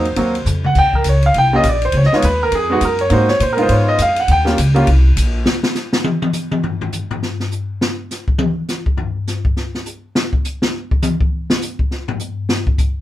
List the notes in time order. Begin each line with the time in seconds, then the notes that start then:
Already playing: E2 C5
0.05 ride
0.16 D#2 F#3 A#3 C4 F#4, kick, ride
0.35 ride
0.45 F2, hi-hat pedal, mid tom
0.64 F#5, mid tom
0.75 D#2 G5, kick, crash
0.93 A#4, muted upright bass stroke, kick
1.04 C#2, hi-hat pedal, ride
1.09 C#5
1.22 F5, ride
1.34 C2, kick, ride
1.38 G5
1.53 G3 A#3 C#4 F4 D#5
1.63 A#1, kick, hi-hat pedal, ride
1.69 D5
1.82 C5, ride
1.92 C#2, kick, ride
1.97 C#5
2.03 D#5, snare
2.12 G#3 B3 D#4 F4 C#5, muted upright bass stroke, snare
2.22 D#2 B4, kick, hi-hat pedal, ride
2.43 A#4
2.52 F2 G#4, kick, ride
2.70 G#3 B3 D#4 F#4 G#4
2.81 F#2, kick, hi-hat pedal, ride
2.85 A#4
2.99 C#5, ride
3.10 G#2 A#3 C4 D#4 F#4 C5, kick, ride
3.28 C#5, snare
3.40 A#2 C5, kick, hi-hat pedal, ride
3.53 A#4
3.57 G#3 B3 D#4 F4, ride
3.63 C5
3.69 G#2 C#5, kick, ride
3.88 D#5
3.98 F2 F5, kick, hi-hat pedal, ride
4.16 F#5, ride
4.28 D#2 G5, kick, ride
4.45 G3 A#3 C#4 F4, snare
4.58 C#2, kick, hi-hat pedal, ride
4.75 G3 A#3 C#4 F4, ride
4.87 C2, kick, ride
5.16 A#1, kick, hi-hat pedal, ride
5.46 snare
5.63 snare
5.75 snare, hi-hat pedal
5.93 snare
6.04 high tom
6.22 high tom
6.33 hi-hat pedal, high tom
6.52 high tom
6.63 floor tom
6.81 floor tom
6.92 floor tom, hi-hat pedal
7.11 floor tom
7.22 snare
7.40 snare
7.51 hi-hat pedal
7.81 snare
8.11 snare, hi-hat pedal
8.28 kick
8.38 high tom
8.68 snare, hi-hat pedal
8.86 kick
8.97 floor tom
9.27 snare, hi-hat pedal
9.45 kick
9.56 snare
9.75 snare
9.86 hi-hat pedal
10.15 snare
10.33 kick
10.44 hi-hat pedal
10.62 snare
10.91 kick
11.02 hi-hat pedal, high tom
11.21 kick
11.50 snare
11.62 hi-hat pedal
11.79 kick
11.91 snare
12.08 floor tom
12.19 hi-hat pedal
12.49 snare
12.67 kick
12.78 kick, hi-hat pedal